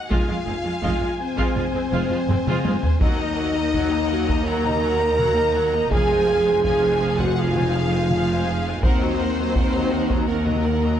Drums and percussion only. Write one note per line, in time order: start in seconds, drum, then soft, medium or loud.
0.11 taiko medium
0.84 taiko medium
1.38 taiko medium
2.29 taiko low-mid medium
2.47 taiko mid medium
2.65 taiko high loud
2.83 taiko low medium
3.01 taiko loud
3.74 taiko medium
4.29 taiko medium
4.65 taiko mid soft
5.19 taiko mid medium
5.91 taiko loud
6.64 taiko medium
7.19 taiko medium
7.55 taiko mid medium
8.10 taiko mid medium
8.83 taiko loud
9.55 taiko medium
10.10 taiko medium
10.47 taiko mid soft